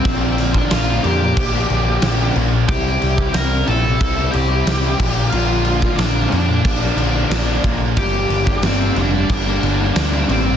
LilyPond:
<<
  \new Staff \with { instrumentName = "Lead electric guitar" } { \time 4/4 \key bes \lydian \tempo 4 = 91 <c' c''>8. <d' d''>16 <f' f''>8 <g' g''>2 r8 | <g' g''>4 <bes' bes''>8 <a' a''>4 <g' g''>4. | <f' f''>4 <d' d''>8 <d' d''>2 r8 | <g' g''>4 <c' c''>8 <d' d''>8 <d' d''>4. <c' c''>8 | }
  \new Staff \with { instrumentName = "Distorted electric guitar" } { \time 4/4 \key bes \lydian <bes, d f bes d'>8 <d f bes d'>8 <bes, d f bes d'>8 <d f bes d'>16 <f bes d'>8 <f bes d'>16 <d f bes d'>16 <f bes d'>16 <bes, d f bes d'>8 <d f bes d'>16 <f bes d'>16 | <c g c' e'>8 <c g c' e'>8 <c g c' e'>8 <c g c' e'>16 <g c' e'>8 <g c' e'>16 <c g c' e'>16 <g c' e'>16 <c g c' e'>8 <bes, d f bes d'>16 <f bes d'>16 | <bes, d f bes d'>8 <d f bes d'>8 <bes, d f bes d'>8 <d f bes d'>16 <f bes d'>8 <f bes d'>16 <d f bes d'>16 <f bes d'>16 <bes, d f bes d'>8 <d f bes d'>16 <f bes d'>16 | <g, d g bes d'>8 <d g bes d'>8 <g, d g bes d'>8 <d g bes d'>16 <g bes d'>8 <g bes d'>16 <d g bes d'>16 <g bes d'>16 <g, d g bes d'>8 <d g bes d'>16 <g bes d'>16 | }
  \new Staff \with { instrumentName = "Overdriven electric guitar" } { \time 4/4 \key bes \lydian <bes, d f bes d'>8. <f bes d'>16 <bes, d f bes d'>8 <d f bes d'>8. <f bes d'>16 <d f bes d'>16 <f bes d'>16 <bes, d f bes d'>8 <d f bes d'>8 | <c g c' e'>8. <g c' e'>16 <c g c' e'>8 <c g c' e'>8. <g c' e'>16 <c g c' e'>16 <g c' e'>16 <c g c' e'>8 <bes, d f bes d'>8 | <bes, d f bes d'>8. <f bes d'>16 <bes, d f bes d'>8 <d f bes d'>8. <f bes d'>16 <d f bes d'>16 <f bes d'>16 <bes, d f bes d'>8 <d f bes d'>8 | <g, d g bes d'>8. <g bes d'>16 <g, d g bes d'>8 <d g bes d'>8. <g bes d'>16 <d g bes d'>16 <g bes d'>16 <g, d g bes d'>8 <d g bes d'>8 | }
  \new Staff \with { instrumentName = "Picked electric bass" } { \clef bass \time 4/4 \key bes \lydian bes,,4 bes,,8 f,8 bes,,8 bes,,8 bes,,8 bes,,8 | c,8 c,8 c,8 bes,,8 c,8 c,8 c,8 bes,,8 | bes,,4 bes,,8 f,8 bes,,8 bes,,8 bes,,8 bes,,8 | g,,8 g,,8 g,,8 f,,8 g,,8 g,,8 d,8 a,,8 | }
  \new DrumStaff \with { instrumentName = "Drums" } \drummode { \time 4/4 <cymc bd>8 <cymc sn>16 bd16 <cymc sn>8 cymc8 <cymc bd>8 cymc8 <cymc sn>8 cymc8 | <cymc bd>8 cymc16 bd16 <cymc sn>8 cymc8 <cymc bd>8 cymc8 <cymc sn>8 <cymc bd>8 | cymc8 cymc16 bd16 <cymc sn>8 cymc8 <cymc bd>8 cymc8 <cymc sn>8 <cymc bd>8 | <cymc bd>8 cymc16 bd16 <cymc sn>8 cymc8 <cymc bd>8 cymc8 <cymc sn>8 cymc8 | }
>>